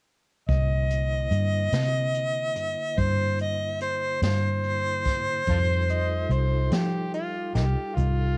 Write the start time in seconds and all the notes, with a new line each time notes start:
0.48 C2 D3 A#3 E4 C5 D#5, kick, closed hi-hat
0.90 closed hi-hat
1.31 G2, closed hi-hat
1.72 C3, snare, closed hi-hat
2.15 closed hi-hat
2.56 G2, closed hi-hat
2.98 G2 C5, kick, closed hi-hat
3.39 D#5, closed hi-hat
3.80 C5, closed hi-hat
4.22 G2 C5, snare, closed hi-hat
4.63 closed hi-hat
5.05 kick, snare, closed hi-hat
5.47 F2 G3 D#4 F4 A4 C5, kick, closed hi-hat
5.89 D#5, closed hi-hat
6.29 C2 C5, closed hi-hat
6.71 F3 G4, snare, closed hi-hat
7.14 F4, closed hi-hat
7.55 C2 A#3 D#4 G4, snare, closed hi-hat
7.96 C2 F4, kick, closed hi-hat